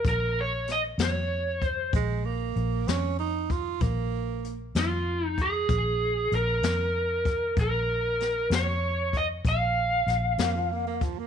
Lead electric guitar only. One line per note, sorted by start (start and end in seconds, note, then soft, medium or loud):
0.09 0.39 A#4 medium
0.41 0.68 C#5 medium
0.72 0.80 D#5 medium
1.03 1.63 C#5 medium
1.63 1.91 C5 medium
4.79 5.27 F4 medium
5.27 5.41 D#4 medium
5.42 6.35 G#4 medium
6.35 7.54 A#4 medium
7.61 8.49 A#4 medium
8.55 9.17 C#5 medium
9.17 9.25 D#5 medium
9.49 10.99 F5 medium